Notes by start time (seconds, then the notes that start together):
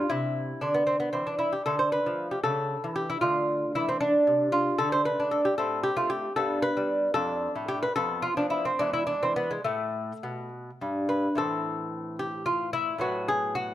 0.10 C3 C4 E4
0.61 D3 D4
0.74 B3
0.87 C4
1.00 B3
1.13 E3 C4
1.27 D4
1.39 E4
1.53 G4
1.66 D3 A3 A4
1.79 C5
1.92 B4
2.06 F3
2.31 G4
2.43 C#3 A3 A4
2.84 E3
2.96 G4
3.10 E4
3.21 D3 A3 F4
3.75 E3 E4
3.89 C4
4.00 D4
4.27 C3
4.52 F4
4.78 D3 A3 A4
4.92 C5
5.05 B4
5.20 D4
5.31 A4
5.45 G4
5.58 A2 C4 A4
5.83 G4
5.96 A3 F4
6.10 G4
6.36 G2 B3 A4
6.62 B4
6.77 G3
7.14 F2 D4 A4
7.56 A2
7.68 G4
7.83 B4
7.96 F2 B3 A4
8.22 F4
8.37 F3 D4
8.50 E4
8.65 C4
8.79 E2 G#3 D4
8.93 E4
9.07 D4
9.23 E3 C4
9.36 B3
9.51 G#3
9.64 A2 A3
10.23 B2
10.81 G2
11.09 B4
11.35 A2 E3 C4 A4
12.19 G4
12.46 F4
12.73 E4
12.98 A2 F#3 B3 F#4
13.28 G#4
13.55 F#4